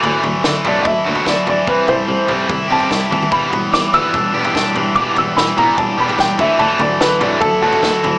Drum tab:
SD |----o-------o---|------------o---|----o-------o---|----o-------o---|
T2 |----------------|--------o-----oo|----------------|----------------|
FT |o-o---o-o--o--o-|o-o---o-o--o--o-|o-o---o-o--o--o-|o-o---o-o--o--o-|
BD |--------o---o---|o-------o---o---|o-------o---o---|o-------o---o-o-|

SD |----o-------o---|
T2 |----------------|
FT |o-o---o-o--o--o-|
BD |--------o---o---|